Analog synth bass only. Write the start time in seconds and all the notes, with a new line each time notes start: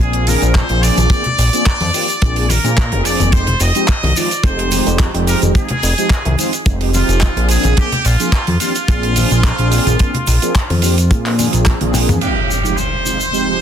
0.00 A#1
0.42 A#1
0.70 A#1
0.98 A#1
1.38 A#1
1.81 F2
2.22 A#1
2.64 A#2
2.92 F1
3.05 F1
3.20 F1
3.61 F1
4.03 C2
4.43 F1
4.86 F1
5.14 F1
5.42 F1
5.83 F1
6.25 C2
6.66 F1
7.09 F1
7.37 A#1
7.64 A#1
8.05 A#1
8.48 F2
8.88 A#1
9.31 A#1
9.59 A#1
9.87 A#1
10.27 A#1
10.70 F2
11.11 A#2
11.53 A#1
11.81 A#1
12.09 F2